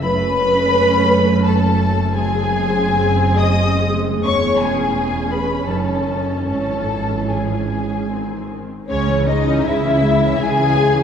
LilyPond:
<<
  \new Staff \with { instrumentName = "Violin section" } { \time 3/4 \key cis \minor \tempo 4 = 84 b''2 a''4 | gis''4.~ gis''16 dis'''8. r8 | cis'''8 gis''4 b''8 a''4 | a''4 gis''4. r8 |
cis''8 dis''8 e''4 gis''4 | }
  \new Staff \with { instrumentName = "Violin section" } { \time 3/4 \key cis \minor b'2 a'4 | gis'4.~ gis'16 dis''8. r8 | cis''8 gis'4 b'8 a'4 | a'4 gis'4. r8 |
cis'8 dis'8 e'4 gis'4 | }
  \new Staff \with { instrumentName = "Viola section" } { \clef bass \time 3/4 \key cis \minor << { cis'2. | bis2. | cis'2.~ | cis'2 bis8. r16 |
gis16 cis'16 gis16 cis'16 gis16 cis'16 gis16 cis'16 gis16 cis'16 gis16 cis'16 | } \\ { a2. | gis2.~ | gis2 dis4 | e2 dis8. r16 |
gis16 e16 gis16 e16 gis16 e16 gis16 e16 gis16 e16 gis16 e16 | } >> }
  \new Staff \with { instrumentName = "Cello section" } { \clef bass \time 3/4 \key cis \minor fis,2.~ | fis,2. | e,2 fis,4 | gis,2~ gis,8 r8 |
cis4 cis4 cis4 | }
  \new Staff \with { instrumentName = "Double bass section" } { \clef bass \time 3/4 \key cis \minor fis,,2.~ | fis,,2. | e,,2 fis,,4 | gis,,2~ gis,,8 r8 |
cis,4 cis,4 cis,4 | }
>>